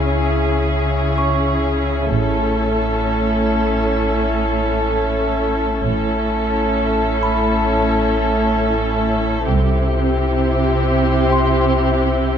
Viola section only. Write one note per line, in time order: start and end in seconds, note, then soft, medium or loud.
0.00 2.07 C#4 soft
0.00 2.08 E4 soft
2.10 5.78 C#4 soft
2.10 5.77 E4 soft
5.82 9.44 C#4 soft
5.82 9.44 E4 soft
9.47 12.38 C4 soft
9.47 12.38 E4 soft